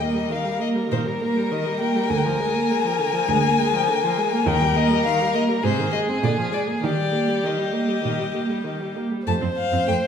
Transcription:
Already playing: D#2 A#4
0.00 A#3 D#5
0.15 G3
0.30 D#3 F5
0.45 G3
0.59 A#3 D#5
0.75 G3
0.90 A#2 D#3 C5
1.05 G3
1.21 A#3 A#4
1.36 G3
1.51 D#3 D#5
1.66 G3
1.80 A#3 G5
1.96 G3
2.09 D2 D3 G#5
2.18 G5
2.24 F3 G#5
2.39 G#3
2.55 A#3
2.70 G#3
2.84 F3
2.99 D3
3.13 F3
3.29 D2 G#3
3.43 A#3
3.58 G#3
3.73 F3
3.89 D3
4.03 F3
4.18 G#3
4.33 A#3
4.46 D#2 D#3 A#4 G5
4.62 G3
4.76 A#3 D#5
4.91 G3
5.05 D#3 F5
5.20 G3
5.35 A#3 D#5
5.49 G3
5.63 G#2 C3 G#4 C5
5.79 D#3
5.92 G#3 D#5
6.09 C4
6.23 A#2 D3 D5
6.37 F3
6.51 G#3 D5
6.67 A#3
6.82 D#3 G4 D5
6.97 G3
7.12 A#3
7.28 G3
7.43 D#3 D#5
7.58 G3
7.73 A#3
7.88 G3
8.04 A#2 D#3
8.19 G3
8.34 A#3
8.50 G3
8.64 D#3
8.80 G3
8.96 A#3
9.11 G3
9.26 F2 A3 C5 A5
9.41 F2 C4
9.58 F5
9.72 F2 C4
9.87 F2 A3 G5

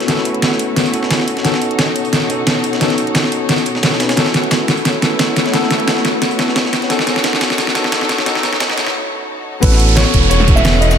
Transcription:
Already playing: A3 B3 C#4 E4 F#4 A4 B4 C#5, riser
0.00 snare, closed hi-hat
0.07 B3 C#4 E4 F#4 A4, snare, closed hi-hat
0.17 snare
0.25 closed hi-hat
0.34 closed hi-hat
0.42 snare, closed hi-hat
0.52 snare
0.59 closed hi-hat
0.76 snare, closed hi-hat
0.86 closed hi-hat
0.92 B3 C#4 E4 F#4 A4, closed hi-hat
1.03 snare
1.11 snare, closed hi-hat
1.20 snare
1.28 closed hi-hat
1.37 snare, closed hi-hat
1.43 B2 B3 C#4 D#4 F#4 A4, snare, closed hi-hat
1.54 snare
1.62 closed hi-hat
1.71 closed hi-hat
1.79 snare, closed hi-hat
1.96 closed hi-hat
2.05 closed hi-hat
2.13 snare, closed hi-hat
2.28 B3 C#4 D#4 F#4 A4, closed hi-hat
2.47 snare, closed hi-hat
2.64 closed hi-hat
2.73 snare, closed hi-hat
2.79 B3 C#4 D#4 F#4 A4, snare, closed hi-hat
2.90 snare, closed hi-hat
2.98 closed hi-hat
3.07 closed hi-hat
3.15 snare, closed hi-hat
3.24 snare
3.32 closed hi-hat
3.49 snare, closed hi-hat
3.58 closed hi-hat
3.66 closed hi-hat
3.75 snare
3.83 snare, closed hi-hat
3.92 snare
3.99 B3 C#4 D#4 F#4 B4, snare, closed hi-hat
4.09 snare, closed hi-hat
4.15 A3 B3 C#4 E4 F#4 A4 B4, snare, closed hi-hat
4.26 snare
4.34 snare, closed hi-hat
4.44 closed hi-hat
4.51 snare, closed hi-hat
4.68 snare, closed hi-hat
4.77 closed hi-hat
4.85 snare, closed hi-hat
5.01 B3 C#4 E4 F#4 A4, snare, closed hi-hat
5.19 snare, closed hi-hat
5.36 snare, closed hi-hat
5.46 snare, closed hi-hat
5.52 B3 C#4 E4 F#4 A4, snare, closed hi-hat
5.63 snare
5.70 snare, closed hi-hat
5.80 closed hi-hat
5.88 snare, closed hi-hat
5.97 snare
6.05 snare, closed hi-hat
6.22 snare, closed hi-hat
6.31 closed hi-hat
6.37 B3 C#4 E4 F#4 A4, snare, closed hi-hat
6.48 snare
6.56 snare, closed hi-hat
6.65 snare
6.73 snare, closed hi-hat
6.82 snare, closed hi-hat
6.88 B2 B3 C#4 D#4 F#4 A4 C#5, snare, closed hi-hat
6.99 snare
7.07 snare, closed hi-hat
7.16 snare, closed hi-hat
7.24 snare, closed hi-hat
7.33 snare
7.41 snare, closed hi-hat
7.50 snare, closed hi-hat
7.58 snare, closed hi-hat
7.67 snare
7.73 B3 C#4 D#4 F#4 A4, snare, closed hi-hat
7.84 snare
7.92 snare, closed hi-hat
8.01 snare
8.09 snare, closed hi-hat
8.18 snare, closed hi-hat
8.25 B3 C#4 D#4 F#4 A4, snare, closed hi-hat
8.35 snare
8.43 snare, closed hi-hat
8.53 snare, closed hi-hat
8.60 snare, closed hi-hat
8.70 snare
8.78 snare, closed hi-hat
8.87 snare
9.61 A1 B3 C#4 E4 F#4 A4 B4 C#5 F#5, kick, closed hi-hat, crash, downlifter, cabasa
9.72 snare, cabasa
9.80 closed hi-hat
9.89 closed hi-hat
9.96 C#5, snare, closed hi-hat, cabasa
10.14 E1, kick, closed hi-hat, cabasa
10.23 closed hi-hat
10.30 C#5, closed hi-hat, cabasa
10.40 snare
10.46 B3 C#4 E4 F#4 A4, kick, closed hi-hat, cabasa
10.56 E5, snare, cabasa
10.65 snare, closed hi-hat, cabasa
10.81 D#5, closed hi-hat, cabasa
10.91 snare, closed hi-hat, cabasa

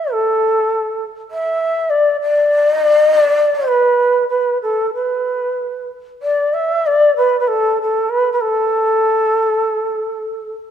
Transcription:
Already playing: E5
0.12 A4
1.31 E5
1.90 D5
2.21 D5
2.72 D#5
2.85 D5
3.00 D#5
3.14 D5
3.67 B4
4.28 B4
4.62 A4
4.94 B4
6.22 D5
6.53 E5
6.86 D5
7.16 B4
7.39 B4
7.47 A4
7.81 A4
8.09 B4
8.32 B4
8.40 A4

